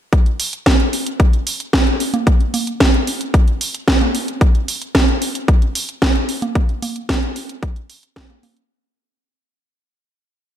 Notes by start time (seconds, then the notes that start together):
0.13 kick, closed hi-hat
0.26 closed hi-hat
0.40 open hi-hat
0.53 closed hi-hat
0.66 kick, snare, closed hi-hat
0.80 closed hi-hat
0.93 open hi-hat
1.06 closed hi-hat
1.20 kick, closed hi-hat
1.33 closed hi-hat
1.47 open hi-hat
1.60 closed hi-hat
1.73 kick, snare, closed hi-hat
1.87 closed hi-hat
2.00 open hi-hat
2.14 closed hi-hat, high conga
2.27 kick, closed hi-hat
2.40 closed hi-hat
2.54 open hi-hat, high conga
2.67 closed hi-hat
2.80 kick, snare, closed hi-hat
2.94 closed hi-hat
3.07 open hi-hat
3.21 closed hi-hat
3.34 kick, closed hi-hat
3.48 closed hi-hat
3.61 open hi-hat
3.75 closed hi-hat
3.88 kick, snare, closed hi-hat
4.01 closed hi-hat, high conga
4.15 open hi-hat
4.28 closed hi-hat
4.41 kick, closed hi-hat
4.55 closed hi-hat
4.68 open hi-hat
4.82 closed hi-hat
4.95 kick, snare, closed hi-hat
5.08 closed hi-hat
5.22 open hi-hat
5.35 closed hi-hat
5.48 kick, closed hi-hat
5.62 closed hi-hat
5.75 open hi-hat
5.89 closed hi-hat
6.02 kick, snare, closed hi-hat
6.16 closed hi-hat
6.29 open hi-hat
6.42 closed hi-hat, high conga
6.55 kick, closed hi-hat
6.69 closed hi-hat
6.82 open hi-hat, high conga
6.96 closed hi-hat
7.09 kick, snare, closed hi-hat
7.23 closed hi-hat
7.36 open hi-hat
7.49 closed hi-hat
7.63 kick, closed hi-hat
7.76 closed hi-hat
7.90 open hi-hat
8.03 closed hi-hat
8.16 kick, snare, closed hi-hat
8.30 closed hi-hat, high conga
8.43 open hi-hat, high conga
8.57 closed hi-hat